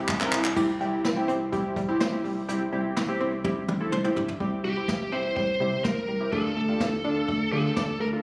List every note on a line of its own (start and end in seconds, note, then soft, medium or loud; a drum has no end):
0.09 0.25 C2 loud
0.09 kick loud
0.09 clap medium
0.21 0.42 C4 medium
0.21 0.42 E4 medium
0.21 0.42 A#4 loud
0.21 clap medium
0.32 0.49 C2 loud
0.32 clap loud
0.45 clap medium
0.56 0.73 C2 loud
0.56 0.68 G3 medium
0.56 0.71 C4 medium
0.56 0.71 E4 medium
0.56 0.71 G4 loud
0.56 kick loud
0.56 crash medium
0.80 0.97 C2 loud
0.80 0.93 G3 medium
0.80 1.02 C4 medium
0.80 1.02 E4 medium
0.80 1.02 G4 loud
0.80 closed hi-hat medium
1.04 1.21 C2 loud
1.04 1.17 E4 medium
1.04 snare loud
1.04 closed hi-hat medium
1.16 1.38 C4 medium
1.16 1.38 E4 medium
1.16 1.38 G4 loud
1.28 1.54 C2 loud
1.28 1.40 C4 medium
1.28 closed hi-hat medium
1.52 1.65 G3 medium
1.52 1.74 C4 medium
1.52 1.74 E4 medium
1.52 1.74 G4 loud
1.52 kick medium
1.52 closed hi-hat medium
1.76 1.93 C2 loud
1.76 1.89 G3 medium
1.76 kick medium
1.76 closed hi-hat medium
1.88 2.03 C4 medium
1.88 2.03 E4 medium
1.88 2.03 G4 loud
2.00 2.17 C2 loud
2.00 2.13 C5 loud
2.00 snare loud
2.00 closed hi-hat medium
2.12 2.34 C4 medium
2.12 2.34 E4 medium
2.12 2.34 G4 loud
2.24 2.41 C2 loud
2.24 2.36 G3 medium
2.24 open hi-hat medium
2.49 2.65 C2 loud
2.49 2.61 G3 medium
2.49 2.63 C4 medium
2.49 2.63 E4 medium
2.49 2.63 G4 loud
2.49 hi-hat pedal medium
2.72 2.89 C2 loud
2.72 2.85 G3 medium
2.72 2.94 C4 medium
2.72 2.94 E4 medium
2.72 2.94 G4 medium
2.96 3.13 C2 loud
2.96 3.09 E4 medium
2.96 snare loud
3.08 3.30 C4 medium
3.08 3.30 E4 medium
3.08 3.30 G4 loud
3.20 3.46 C2 loud
3.20 3.33 C4 medium
3.44 3.57 G3 medium
3.44 3.66 C4 medium
3.44 3.66 E4 medium
3.44 3.66 G4 loud
3.44 kick loud
3.44 high tom medium
3.68 3.85 C2 loud
3.68 3.81 G3 medium
3.68 mid tom medium
3.81 3.95 C4 medium
3.81 3.95 E4 medium
3.81 3.95 A4 loud
3.92 4.09 C2 loud
3.92 4.04 C5 loud
3.92 mid tom medium
4.04 4.26 C4 medium
4.04 4.26 E4 medium
4.04 4.26 G4 medium
4.04 mid tom medium
4.16 4.33 C2 loud
4.16 4.28 G3 medium
4.16 floor tom loud
4.28 floor tom medium
4.40 4.57 C2 loud
4.40 4.52 G3 medium
4.40 4.62 C4 medium
4.40 4.62 E4 medium
4.40 4.62 G4 medium
4.40 kick loud
4.64 4.81 C2 medium
4.64 4.76 G3 medium
4.64 5.14 G4 medium
4.77 4.98 C4 medium
4.77 4.98 E4 medium
4.77 4.98 G4 medium
4.88 5.05 C2 loud
4.88 5.00 E4 medium
4.88 kick loud
4.88 snare loud
5.12 5.29 C2 loud
5.12 5.24 C4 medium
5.12 5.41 C4 medium
5.12 5.41 E4 medium
5.12 5.41 G4 medium
5.12 5.35 C5 medium
5.36 5.53 C2 loud
5.36 5.48 G3 medium
5.36 5.84 C5 medium
5.36 kick loud
5.60 5.77 C3 loud
5.60 5.72 G3 medium
5.60 5.96 C4 medium
5.60 5.96 E4 medium
5.60 5.96 G4 medium
5.84 6.01 C2 loud
5.84 6.32 A#4 medium
5.84 5.96 C5 medium
5.84 kick loud
5.84 snare loud
6.08 6.25 C2 loud
6.08 6.20 G3 medium
6.21 6.28 C4 medium
6.21 6.28 E4 medium
6.21 6.28 G4 medium
6.32 6.49 D2 loud
6.32 6.44 A3 medium
6.32 6.54 D4 medium
6.32 6.54 F4 medium
6.32 7.51 A4 medium
6.32 6.54 A4 medium
6.32 kick loud
6.56 6.73 D2 medium
6.56 6.68 A3 medium
6.68 6.90 D4 medium
6.68 6.90 F4 medium
6.68 6.90 G4 medium
6.80 6.97 D2 loud
6.80 6.92 F4 medium
6.80 kick loud
6.80 snare loud
7.04 7.21 D2 medium
7.04 7.17 D4 medium
7.04 7.33 D4 medium
7.04 7.33 F4 medium
7.04 7.33 A4 medium
7.28 7.45 D2 loud
7.28 7.40 A3 medium
7.28 kick loud
7.52 7.69 D3 loud
7.52 7.64 A3 medium
7.52 7.88 D4 medium
7.52 7.88 F4 medium
7.52 7.88 G4 medium
7.52 7.97 A4 medium
7.76 7.93 D2 medium
7.76 7.88 D5 medium
7.76 kick loud
7.76 snare loud
8.00 8.17 D2 loud
8.00 8.12 A3 medium
8.00 8.07 A#4 medium
8.13 8.20 D4 medium
8.13 8.20 F4 medium
8.13 8.20 A4 medium